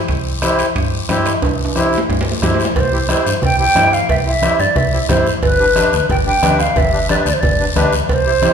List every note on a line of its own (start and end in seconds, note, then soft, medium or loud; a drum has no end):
0.08 0.62 C2 medium
0.08 bombo low medium
0.08 high conga soft
0.08 high timbale medium
0.08 long guiro medium
0.42 0.66 E4 medium
0.42 0.66 G4 medium
0.42 0.66 C5 medium
0.42 bombo rim medium
0.42 high conga medium
0.42 high timbale medium
0.42 short guiro medium
0.59 high timbale medium
0.59 short guiro medium
0.76 1.03 G2 loud
0.76 bombo low medium
0.76 high conga soft
0.76 high timbale medium
0.76 long guiro medium
1.09 1.36 G2 medium
1.09 1.33 E4 medium
1.09 1.33 G4 medium
1.09 1.33 C5 medium
1.09 bombo rim medium
1.09 high conga medium
1.09 high timbale medium
1.09 low timbale medium
1.09 short guiro medium
1.26 bombo rim medium
1.26 high timbale medium
1.26 short guiro medium
1.42 1.96 C2 medium
1.42 bombo low medium
1.42 high timbale medium
1.42 long guiro medium
1.65 high timbale medium
1.76 1.99 E4 medium
1.76 2.00 G4 medium
1.76 2.00 C5 medium
1.76 bombo rim medium
1.76 high conga medium
1.76 short guiro medium
1.93 short guiro medium
1.98 low timbale medium
2.09 2.36 G2 medium
2.09 bombo low medium
2.09 high conga soft
2.09 low timbale medium
2.09 long guiro medium
2.21 low timbale loud
2.32 low timbale medium
2.42 2.69 G2 medium
2.42 2.66 E4 medium
2.42 2.66 G4 medium
2.42 2.66 C5 medium
2.42 bombo low medium
2.42 bombo rim medium
2.42 high conga medium
2.42 low timbale medium
2.42 short guiro medium
2.54 low timbale medium
2.60 short guiro medium
2.65 low timbale medium
2.76 3.16 C2 loud
2.76 3.08 C5 medium
2.76 bombo low medium
2.76 cowbell loud
2.76 high conga soft
2.76 long guiro medium
2.92 2.98 E4 medium
2.92 2.98 G4 medium
2.92 2.99 C5 medium
3.09 3.27 E4 medium
3.09 3.27 G4 medium
3.09 3.27 C5 medium
3.09 3.41 C5 medium
3.09 bombo rim medium
3.09 cowbell medium
3.09 high conga medium
3.09 short guiro medium
3.27 3.33 G2 medium
3.27 short guiro medium
3.42 3.69 C2 medium
3.42 3.59 G5 loud
3.42 bombo low medium
3.42 cowbell medium
3.42 high conga soft
3.42 low conga medium
3.42 long guiro medium
3.59 3.65 E4 medium
3.59 3.65 G4 medium
3.59 3.65 C5 medium
3.59 3.95 G5 loud
3.75 4.03 G2 medium
3.75 3.93 E4 medium
3.75 3.93 G4 medium
3.75 3.94 C5 medium
3.75 bombo rim medium
3.75 cowbell medium
3.75 high conga medium
3.75 low timbale medium
3.75 short guiro medium
3.93 4.09 F5 loud
3.93 short guiro medium
4.09 4.49 C2 loud
4.09 4.16 E5 loud
4.09 bombo low medium
4.09 cowbell loud
4.09 long guiro medium
4.25 4.32 E4 medium
4.25 4.32 G4 soft
4.25 4.32 C5 medium
4.25 4.62 E5 loud
4.42 4.61 E4 medium
4.42 4.61 G4 medium
4.42 4.61 C5 medium
4.42 bombo rim medium
4.42 cowbell medium
4.42 high conga medium
4.42 short guiro medium
4.59 4.66 G2 loud
4.59 4.78 D5 loud
4.59 short guiro medium
4.76 5.03 C2 loud
4.76 5.09 E5 medium
4.76 bombo low medium
4.76 cowbell medium
4.76 high conga soft
4.76 low conga medium
4.76 long guiro medium
4.92 4.99 E4 medium
4.92 4.99 G4 medium
4.92 4.99 C5 medium
5.09 5.36 G2 medium
5.09 5.27 E4 medium
5.09 5.27 G4 medium
5.09 5.33 C5 medium
5.09 5.27 C5 medium
5.09 bombo low medium
5.09 bombo rim medium
5.09 cowbell medium
5.09 high conga medium
5.09 low conga medium
5.09 low timbale medium
5.09 short guiro medium
5.27 short guiro medium
5.43 5.83 G1 loud
5.43 6.06 B4 medium
5.43 bombo low medium
5.43 cowbell loud
5.43 high conga soft
5.43 long guiro medium
5.60 5.65 D4 medium
5.60 5.65 G4 medium
5.60 5.66 B4 medium
5.76 5.94 D4 medium
5.76 5.94 G4 medium
5.76 5.94 B4 medium
5.76 bombo rim medium
5.76 cowbell medium
5.76 high conga medium
5.76 short guiro medium
5.93 6.00 D2 medium
5.93 short guiro medium
6.09 6.36 G1 loud
6.09 6.17 G5 medium
6.09 bombo low medium
6.09 cowbell medium
6.09 high conga soft
6.09 low conga medium
6.09 long guiro medium
6.26 6.32 D4 medium
6.26 6.32 G4 medium
6.26 6.33 B4 medium
6.26 6.62 G5 loud
6.42 6.70 D2 medium
6.42 6.60 D4 medium
6.42 6.60 G4 medium
6.42 6.61 B4 medium
6.42 bombo rim medium
6.42 cowbell medium
6.42 high conga medium
6.42 short guiro medium
6.59 6.79 F5 medium
6.59 bombo rim medium
6.59 short guiro medium
6.76 7.16 G1 loud
6.76 7.10 E5 medium
6.76 bombo low medium
6.76 cowbell loud
6.76 high conga soft
6.76 low conga medium
6.76 long guiro medium
6.93 6.99 D4 medium
6.93 6.99 G4 medium
6.93 6.99 B4 medium
7.09 7.27 D4 medium
7.09 7.27 G4 medium
7.09 7.27 B4 medium
7.09 7.16 D5 medium
7.09 bombo rim medium
7.09 cowbell medium
7.09 high conga medium
7.09 short guiro medium
7.26 7.33 D2 medium
7.26 7.35 D5 medium
7.26 short guiro medium
7.34 7.42 C5 medium
7.41 7.69 G1 loud
7.41 7.66 D5 medium
7.41 bombo low medium
7.41 cowbell medium
7.41 high conga soft
7.41 low conga medium
7.41 long guiro medium
7.59 7.65 D4 medium
7.59 7.65 G4 medium
7.59 7.66 B4 medium
7.75 8.03 D2 medium
7.75 7.93 D4 medium
7.75 7.94 G4 medium
7.75 7.94 B4 medium
7.75 bombo low medium
7.75 bombo rim medium
7.75 cowbell medium
7.75 high conga medium
7.75 short guiro medium
7.93 short guiro medium
8.09 8.49 C2 loud
8.09 8.53 C5 medium
8.09 bombo low medium
8.09 cowbell loud
8.09 high conga soft
8.09 long guiro medium
8.26 8.32 E4 medium
8.26 8.32 G4 medium
8.26 8.32 C5 medium
8.42 8.53 E4 medium
8.42 8.53 G4 medium
8.42 8.53 C5 medium
8.42 bombo rim medium
8.42 cowbell medium
8.42 high conga medium
8.42 short guiro medium